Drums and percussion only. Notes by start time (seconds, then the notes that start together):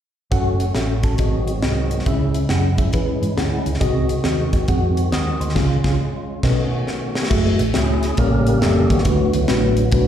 0.32 kick, closed hi-hat
0.60 closed hi-hat
0.75 snare, closed hi-hat
1.03 kick, snare, closed hi-hat
1.18 kick, closed hi-hat
1.48 closed hi-hat
1.63 snare, closed hi-hat
1.91 closed hi-hat
1.99 snare
2.06 kick, closed hi-hat
2.34 closed hi-hat
2.49 snare, closed hi-hat
2.78 kick, closed hi-hat
2.93 kick, closed hi-hat
3.23 closed hi-hat
3.38 snare, closed hi-hat
3.66 closed hi-hat
3.74 snare
3.81 kick, closed hi-hat
4.09 closed hi-hat
4.24 snare, closed hi-hat
4.53 kick, snare, closed hi-hat
4.68 kick, closed hi-hat
4.97 closed hi-hat
5.12 snare, closed hi-hat
5.41 closed hi-hat
5.49 snare
5.56 kick, snare, crash
5.84 kick, snare
6.43 kick, snare, crash
6.87 snare
7.15 snare
7.23 snare
7.31 kick, crash
7.59 closed hi-hat
7.74 snare, closed hi-hat
8.03 snare, closed hi-hat
8.17 kick, closed hi-hat
8.47 closed hi-hat
8.62 snare, closed hi-hat
8.90 kick, closed hi-hat
8.98 snare
9.05 kick, closed hi-hat
9.33 closed hi-hat
9.48 snare, closed hi-hat
9.77 closed hi-hat
9.92 kick, closed hi-hat